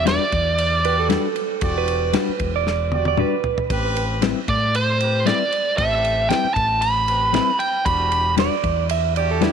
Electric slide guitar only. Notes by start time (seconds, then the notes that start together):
0.85 B4
0.99 A4
1.78 B4
2.56 D5
3.08 D5
3.20 B4
8.39 D5
8.91 E5
9.17 D5
9.31 A4
9.44 E4